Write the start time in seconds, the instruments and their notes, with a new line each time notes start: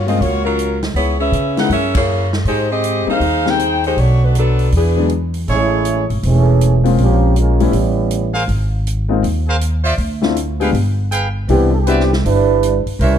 Already playing: upright bass G2
0.06 grand piano G#3 A#3 C#4 F4, saxophone section C4 F4 G#4 D#5, open hi-hat
0.20 upright bass C#2, saxophone section A#3 F4 F#4 C#5, open hi-hat
0.45 saxophone section F#3 C#4 F4 A#4
0.59 closed hi-hat
0.83 snare, open hi-hat
0.94 upright bass C#2, saxophone section B3 E4 G#4 C#5, open hi-hat
1.20 saxophone section C#4 G#4 B4 E5
1.32 upright bass C#3, closed hi-hat
1.56 grand piano G#3 A#3 C#4 E4, saxophone section D#4 G#4 B4 F#5, snare, open hi-hat
1.69 upright bass F#2, saxophone section C#4 G#4 A#4 E5, open hi-hat
1.95 saxophone section A#3 E4 G#4 C#5, kick, ride
2.33 snare
2.45 upright bass G#2, saxophone section G#3 D#4 G4 C5, open hi-hat
2.72 saxophone section C4 G4 G#4 D#5
2.84 closed hi-hat
3.06 grand piano G3 A#3 C4 D#4, saxophone section D#4, muted upright bass stroke
3.10 saxophone section G#4 C5 F5
3.20 upright bass D#2, open hi-hat
3.45 grand piano G3 A#3 C4 D#4, saxophone section G#4, snare
3.49 saxophone section D#4 C5 G5
3.60 closed hi-hat
3.84 saxophone section G#3 D#4 G4 C5, open hi-hat
3.97 upright bass B1, saxophone section A3 D4 F#4 C#5, open hi-hat
4.24 saxophone section A3 D4 F#4 B4
4.35 saxophone section F#3 B3 A4, closed hi-hat
4.39 saxophone section D4
4.59 open hi-hat
4.72 upright bass E2, open hi-hat
4.76 saxophone section E3 B3 D4 G#4
4.96 grand piano F#3 G#3 B3 D4
5.09 closed hi-hat
5.34 open hi-hat
5.48 upright bass A1, trombone section G#3 A3 C#4 E4, trumpet section E4 G#4 C#5, open hi-hat
5.85 closed hi-hat
6.10 upright bass G#1, open hi-hat
6.23 upright bass E1, trombone section E3 A3 C#4 G#4, open hi-hat
6.61 closed hi-hat
6.84 grand piano G#3 A#3 C4 C#4 F4, open hi-hat
6.97 upright bass A#1, trombone section F3 A#3 C#4 G4, open hi-hat
7.36 trombone section G#3 A#3 C#4 F4, closed hi-hat
7.60 grand piano G3 A3 B3 C#4 E4, trombone section G3 B3 C#4 E4, open hi-hat
7.72 upright bass A1, open hi-hat
8.11 closed hi-hat
8.34 trumpet section G#4 A#4 C5 F5, open hi-hat
8.48 upright bass G#1, open hi-hat
8.87 closed hi-hat
9.09 grand piano G#3 A#3 C4 D#4 F4
9.23 upright bass D#2, open hi-hat
9.48 trumpet section G#4 A#4 C5 F5
9.61 closed hi-hat
9.84 trumpet section F4 C5 D5 E5, open hi-hat
9.98 upright bass D2, open hi-hat
10.21 grand piano A3 C4 D4 E4 F4, snare
10.37 closed hi-hat
10.60 grand piano G#3 B3 D4 F4 G4, trumpet section G#4 B4 F5 G5, open hi-hat
10.72 upright bass G1, open hi-hat
11.11 trumpet section G#4 B4 F5 G5, closed hi-hat
11.48 upright bass C2, trombone section E3 B3 D4 G4, grand piano B3 C4 D4 E4 G4, open hi-hat
11.73 trombone section A4
11.79 trombone section G4
11.87 grand piano B3 C4 D4 E4 G4, trombone section F#4, trumpet section B4 C5 D5 E5, closed hi-hat
11.99 trombone section G4, snare
12.13 snare
12.24 upright bass G1, trombone section G3 D4 E4 B4, open hi-hat
12.63 closed hi-hat
12.86 muted upright bass stroke, open hi-hat
12.99 upright bass C2, trombone section G3 C#4 E4 A#4, trumpet section A#4 C5 C#5 E5, open hi-hat